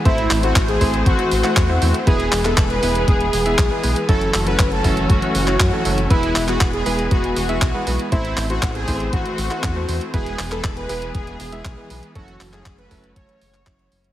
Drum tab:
HH |xxoxxxoxxxoxx-ox|xxoxxxoxxxoxx-ox|xxoxxxoxxxoxx-ox|xxoxxxoxxxoxx-ox|
CP |--x-x------xx---|--xxx-------x---|--x-x------xx---|--xxx-------x---|
BD |o---o-o-o---o---|o---o---o---o---|o---o-o-o---o---|o---o---o---o---|

HH |xxoxxxoxxxoxx-ox|xxoxxxoxxxoxx-ox|xxoxxxoxxxoxxxox|
CP |--x-x------xx---|--xxx-------x---|--xxx------xx---|
BD |o---o-o-o---o---|o---o---o---o---|o---o-o-o---o---|